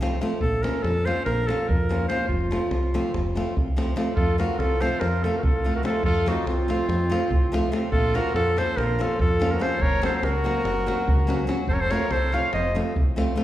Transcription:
Already playing: C2
0.01 F3 A3 C4 F4, davul high
0.21 F3 A3 C4 F4, davul high
0.41 A#1 A4, davul low
0.63 F3 A#3 C#4 F4 A#4, davul high
0.83 F2 A4, davul high
1.05 F3 A#3 C#4 F4 C5, davul high
1.25 A#1 A#4, davul high
1.38 davul high
1.47 F3 A#3 C#4 F4 A4, davul high
1.68 F2 A#4, davul low
1.89 F3 A#3 C#4 F4, davul high
2.08 F3 A#3 C#4 F4 C5, davul high
2.28 F1 F4, davul low
2.41 davul high
2.51 F3 A3 C4 F4, davul high
2.62 davul high
2.71 C2, davul high
2.83 davul high
2.94 F3 A3 C4 F4, davul high
3.05 davul high
3.14 F1, davul high, davul low
3.27 davul high
3.35 F3 A3 C4 F4, davul high
3.57 C2, davul low
3.68 davul high
3.77 F3 A3 C4 F4, davul high
3.88 davul high
3.96 F3 A3 C4 F4, davul high
4.07 davul high
4.15 F2 F4 A4, davul low
4.38 F3 A3 C4 F4 F#4 A#4, davul high
4.58 C2 F4 A4, davul high
4.80 F3 A3 C4 F4 A4 C5, davul high
5.00 F2 F4 A#4, davul high
5.13 davul high
5.23 F3 A3 C4 F4 A4, davul high
5.37 F#4 A#4
5.43 C2 F4 A4, davul low
5.64 F3 A3 C4 F4
5.75 F#4 A#4
5.83 F3 A3 C4 F4 A4, davul high
6.03 F2 F4 A4, davul low
6.26 F3 A3 C4 D#4 F4 F#4, davul high
6.46 C2 C4 F4, davul high
6.68 F3 A3 C4 F4, davul high
6.89 F2, davul high
7.02 davul high
7.10 F3 A3 C4 F4, davul high
7.30 C2, davul low
7.52 F3 A3 C4 F4, davul high
7.72 F3 A3 C4 F4, davul high
7.91 A#1 F4 A4, davul low
8.14 F3 A#3 C#4 F4 F#4 A#4, davul high
8.34 F2 F4 A4, davul high
8.57 F3 A#3 C#4 F4 A4 C5, davul high
8.77 A#1 F4 A#4, davul high
8.89 davul high
8.99 F3 A#3 C#4 F4 A4, davul high
9.19 F2 F4 A4, davul low
9.40 F3 A#3 C#4 F4, davul high
9.51 F#4 A#4
9.59 F3 A#3 C#4 F4 A4 C5, davul high
9.79 F#1 A#4 C#5, davul low
10.02 F#3 A#3 C#4 F#4 A4 C5, davul high
10.14 A4 C5, davul high
10.22 C#2 F#4 A#4, davul high
10.44 F#3 A#3 C#4 F#4, davul high
10.65 F#1, davul high
10.86 F#3 A#3 C#4 F#4, davul high
10.98 davul high
11.07 C#2, davul low
11.19 davul high
11.27 F#3 A#3 C#4 F#4, davul high
11.47 F#3 A#3 C#4 F#4, davul high
11.59 davul high
11.67 F1 A4 C5, davul low
11.73 A#4 C#5
11.80 A4 C5
11.91 F3 A3 C4 F4 A#4 C#5, davul high
12.11 C2 A4 C5, davul high
12.32 F3 A3 C4 F4 C#5 F5, davul high
12.53 F1 C5 D#5, davul high
12.65 davul high
12.75 F3 A3 C4 F4, davul high
12.96 C2, davul low
13.16 F3 A3 C4 F4, davul high
13.35 F3 A3 C4 F4, davul high

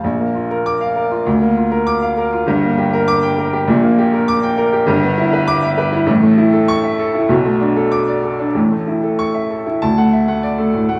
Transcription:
0.04 A#1
0.20 A#3
0.35 F4
0.51 A#4
0.66 D6
0.81 F5
0.96 A#4
1.11 F4
1.26 D2
1.42 A#3
1.57 F4
1.72 A#4
1.87 D6
2.02 F5
2.17 A#4
2.33 F4
2.47 G1 G2
2.63 A#3
2.78 G4
2.93 A#4
3.08 D6
3.23 G5
3.38 A#4
3.53 G4
3.67 A#1 A#2
3.83 A#3
3.99 G4
4.13 A#4
4.28 D6
4.43 G5
4.58 A#4
4.73 G4
4.87 G1 G2
5.03 B3
5.18 E4
5.33 B4
5.48 D6
5.63 E5
5.78 B4
5.92 E4
6.06 A1 A2
6.22 A3
6.38 E4
6.53 A4
6.68 C#6
6.83 E5
6.99 A4
7.15 E4
7.29 B1 B2
7.45 A3
7.61 D4
7.76 A4
7.92 D6
8.08 D5
8.23 A4
8.39 D4
8.54 A1 A2
8.71 A3
8.87 E4
9.03 A4
9.19 C#6
9.34 E5
9.51 A4
9.66 E4
9.82 D2 A5
9.98 A3 F#5
10.13 E5
10.28 A3 F#5
10.43 D5
10.58 A3 A4
10.74 A2
10.89 A3 F#5

